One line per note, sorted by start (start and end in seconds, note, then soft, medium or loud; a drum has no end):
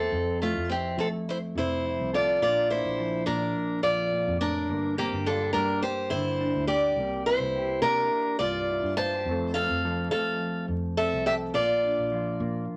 0.00 0.10 A#3 medium
0.00 0.37 C4 medium
0.00 0.10 E4 medium
0.00 0.11 G4 medium
0.00 0.38 A4 medium
0.12 0.54 F2 medium
0.12 2.42 F2 medium
0.12 muted clean electric guitar stroke medium
0.42 0.68 A3 medium
0.42 0.70 E4 soft
0.42 0.69 F4 medium
0.56 0.95 F2 medium
0.69 0.96 C4 medium
0.69 1.85 E4 medium
0.69 0.97 G4 medium
0.69 muted clean electric guitar stroke medium
0.97 1.24 F3 medium
0.97 2.39 A3 medium
0.97 1.06 C4 medium
0.97 1.07 A4 medium
1.29 1.36 E4 medium
1.29 1.38 C5 medium
1.55 1.97 F2 medium
1.55 2.38 C3 medium
1.55 2.10 E4 medium
1.55 2.16 C5 medium
1.86 2.39 E4 medium
2.00 2.39 C2 medium
2.13 2.40 F4 medium
2.13 2.38 A4 medium
2.13 2.42 D5 medium
2.42 2.83 A#1 medium
2.42 4.12 A#2 medium
2.42 3.28 A#3 medium
2.42 2.70 D4 medium
2.42 2.68 F4 medium
2.42 2.98 F4 medium
2.42 2.69 D5 medium
2.42 muted clean electric guitar stroke medium
2.70 4.67 D4 soft
2.70 3.23 E4 medium
2.70 3.26 C5 medium
2.85 3.24 A#1 medium
2.98 4.66 F3 medium
2.98 muted clean electric guitar stroke medium
3.26 3.54 A#2 medium
3.26 4.70 A#3 medium
3.26 3.79 D4 medium
3.26 3.80 A#4 medium
3.83 4.25 A#1 medium
3.83 4.40 F2 medium
3.83 4.36 F4 medium
3.83 4.36 D5 medium
4.13 4.41 A#2 medium
4.28 4.67 F2 medium
4.41 4.69 A2 medium
4.41 4.94 D4 medium
4.41 4.94 A#4 medium
4.69 5.11 G1 loud
4.69 6.95 G2 medium
4.69 5.56 A#3 medium
4.98 5.25 A#3 medium
4.98 5.15 C4 medium
4.98 5.27 G4 medium
5.12 5.52 G1 medium
5.12 6.39 D4 soft
5.26 6.95 G3 medium
5.26 5.53 D4 medium
5.26 5.42 F4 medium
5.26 5.52 A4 medium
5.42 6.69 G4 medium
5.53 5.81 G2 medium
5.53 6.96 A#3 medium
5.53 5.81 D4 medium
5.53 5.80 A#4 medium
5.82 6.10 G4 medium
5.82 6.10 C5 medium
6.10 6.53 G1 medium
6.10 6.95 D3 medium
6.10 6.64 E4 medium
6.10 6.65 C5 medium
6.40 6.95 D4 medium
6.55 6.95 D2 medium
6.67 7.22 G4 medium
6.67 6.95 G4 medium
6.67 7.26 D5 medium
6.96 7.38 C2 medium
6.96 7.55 C3 medium
6.96 7.83 A#3 medium
7.26 7.79 E4 medium
7.26 8.69 E4 medium
7.26 7.81 C5 medium
7.40 7.80 C2 medium
7.56 8.98 G4 medium
7.81 8.09 C3 medium
7.81 9.23 A#3 medium
7.81 8.36 D4 medium
7.81 8.36 A#4 medium
8.39 8.81 C2 medium
8.39 9.23 G2 medium
8.39 8.93 F4 medium
8.39 8.93 D5 medium
8.70 9.24 E4 medium
8.83 9.23 G2 medium
8.97 9.15 F4 medium
8.97 9.51 C5 medium
8.97 9.53 A5 loud
9.15 9.27 G4 soft
9.25 9.67 F2 medium
9.25 11.55 F2 medium
9.25 9.84 F3 medium
9.29 10.12 A3 medium
9.29 9.56 C4 medium
9.29 9.85 A4 medium
9.54 10.98 C4 medium
9.54 10.08 A4 medium
9.54 10.07 F5 medium
9.70 10.09 F2 medium
9.85 11.52 F3 medium
9.85 11.26 A4 medium
10.11 10.38 F3 medium
10.11 11.52 A3 medium
10.11 10.65 A4 medium
10.11 10.64 F5 medium
10.68 11.10 F2 medium
10.68 muted clean electric guitar stroke medium
10.97 11.55 C4 medium
10.97 11.24 A4 medium
10.97 11.24 E5 medium
11.13 11.52 C2 medium
11.26 11.34 G4 medium
11.26 11.52 A4 medium
11.26 11.34 E5 medium
11.54 11.96 A#1 medium
11.54 12.77 A#2 medium
11.54 12.40 A#3 medium
11.54 12.64 F4 medium
11.54 12.64 D5 medium
11.84 12.77 D4 medium
11.99 12.38 A#1 medium
12.11 12.77 F3 medium
12.11 12.77 F4 medium
12.40 12.67 A#2 medium
12.40 12.77 A#3 medium